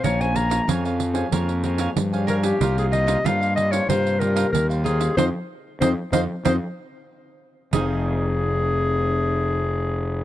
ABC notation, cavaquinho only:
X:1
M:4/4
L:1/16
Q:1/4=94
K:Fm
V:1 name="Cavaquinho"
[Bdfa]2 [Bdfa] [Bdfa] [Bdfa] [dfa]2 [dfa] [Bdfa]2 [Bdfa] [Bdfa] z [dfa] [Bdfa] [dfa] | [FBcf]2 [FBcf] [FBcf] [FBcf] [Bcf]2 [Bcf] [FBcf]2 [FBcf] [FBcf] z [Bcf] [FBcf] [Bcf] | [cef]2 z2 [cef]2 [cef]2 [cef]2 z6 | [EAcf]16 |]